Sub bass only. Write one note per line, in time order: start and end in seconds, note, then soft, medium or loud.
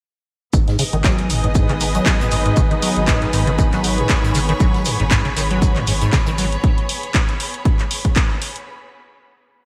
0.54 0.62 G#1 loud
0.93 1.23 G#1 medium
1.30 1.61 G#1 medium
1.69 1.99 G#1 medium
2.20 2.50 G#1 medium
2.57 2.66 G#1 medium
2.97 3.26 G#1 medium
3.33 3.64 G#1 medium
3.73 4.03 G#1 medium
4.24 4.53 G#1 medium
4.60 4.69 G#1 loud
5.00 5.30 G#1 medium
5.37 5.68 G#1 medium
5.76 6.06 G#1 medium
6.27 6.57 G#1 medium